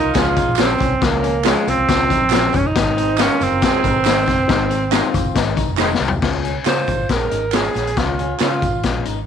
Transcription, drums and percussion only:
0.14 kick loud
0.14 snare loud
0.14 closed hi-hat loud
0.14 tambourine medium
0.36 kick medium
0.36 closed hi-hat medium
0.36 tambourine medium
0.56 snare loud
0.56 clap loud
0.56 closed hi-hat loud
0.56 tambourine loud
0.78 kick medium
0.78 closed hi-hat medium
0.78 tambourine medium
1.01 kick loud
1.01 snare loud
1.01 closed hi-hat medium
1.01 tambourine soft
1.24 closed hi-hat medium
1.24 tambourine soft
1.44 snare loud
1.44 clap loud
1.44 closed hi-hat medium
1.44 tambourine loud
1.68 closed hi-hat medium
1.68 tambourine medium
1.89 kick medium
1.89 snare loud
1.89 closed hi-hat loud
1.89 tambourine medium
2.10 kick loud
2.10 closed hi-hat medium
2.10 tambourine medium
2.30 snare loud
2.30 clap loud
2.30 closed hi-hat loud
2.30 tambourine loud
2.53 kick medium
2.53 closed hi-hat medium
2.53 tambourine soft
2.76 kick loud
2.76 snare loud
2.76 closed hi-hat medium
2.76 tambourine soft
2.98 closed hi-hat medium
2.98 tambourine soft
3.18 snare loud
3.18 clap loud
3.18 closed hi-hat loud
3.18 tambourine loud
3.41 closed hi-hat medium
3.41 tambourine medium
3.62 kick loud
3.62 snare loud
3.62 closed hi-hat loud
3.62 tambourine medium
3.84 kick medium
3.84 closed hi-hat medium
3.84 tambourine medium
4.05 snare loud
4.05 clap loud
4.05 closed hi-hat loud
4.05 tambourine loud
4.26 kick medium
4.26 snare soft
4.26 closed hi-hat medium
4.26 tambourine medium
4.49 kick loud
4.49 snare loud
4.49 closed hi-hat medium
4.71 closed hi-hat medium
4.71 tambourine soft
4.92 snare loud
4.92 clap loud
4.92 closed hi-hat loud
4.92 tambourine loud
5.14 kick loud
5.14 closed hi-hat medium
5.14 tambourine medium
5.35 kick medium
5.35 snare loud
5.35 closed hi-hat loud
5.35 tambourine medium
5.57 kick medium
5.57 closed hi-hat medium
5.57 tambourine medium
5.78 snare medium
5.78 clap loud
5.78 tambourine loud
5.94 snare medium
6.00 tambourine medium
6.08 floor tom loud
6.22 kick loud
6.22 snare loud
6.22 crash medium
6.22 tambourine soft
6.45 closed hi-hat medium
6.45 tambourine soft
6.66 snare loud
6.66 clap medium
6.66 closed hi-hat medium
6.66 tambourine medium
6.88 kick medium
6.88 closed hi-hat medium
6.88 tambourine medium
7.09 kick medium
7.09 snare loud
7.09 closed hi-hat medium
7.09 tambourine medium
7.31 closed hi-hat medium
7.31 tambourine soft
7.52 snare loud
7.52 clap medium
7.52 closed hi-hat medium
7.52 tambourine medium
7.64 closed hi-hat soft
7.74 snare soft
7.74 closed hi-hat medium
7.74 tambourine soft
7.87 closed hi-hat medium
7.96 kick loud
7.96 snare loud
7.96 closed hi-hat medium
7.96 tambourine soft
8.19 closed hi-hat medium
8.40 snare medium
8.40 clap medium
8.40 closed hi-hat medium
8.40 tambourine medium
8.62 kick medium
8.62 closed hi-hat medium
8.62 tambourine medium
8.83 kick medium
8.83 snare loud
8.83 closed hi-hat medium
8.83 tambourine medium
9.05 closed hi-hat medium
9.05 tambourine soft

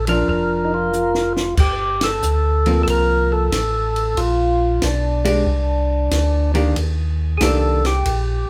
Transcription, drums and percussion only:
0.07 ride medium
0.28 kick soft
0.93 hi-hat pedal soft
1.15 snare soft
1.37 snare medium
1.57 kick medium
1.57 crash medium
2.01 snare medium
2.01 ride medium
2.22 hi-hat pedal medium
2.66 ride soft
2.87 kick soft
2.87 ride medium
3.52 kick soft
3.52 snare medium
3.52 hi-hat pedal medium
3.52 ride medium
3.96 ride soft
4.17 kick soft
4.17 ride medium
4.82 kick soft
4.82 snare medium
4.82 hi-hat pedal medium
4.82 ride medium
5.25 ride medium
5.46 kick soft
6.11 kick soft
6.11 snare medium
6.11 hi-hat pedal soft
6.11 ride medium
6.55 ride soft
6.76 kick soft
6.76 ride medium
7.41 kick soft
7.41 snare medium
7.41 hi-hat pedal soft
7.41 ride medium
7.85 snare soft
7.85 ride soft
8.06 kick soft
8.06 ride medium

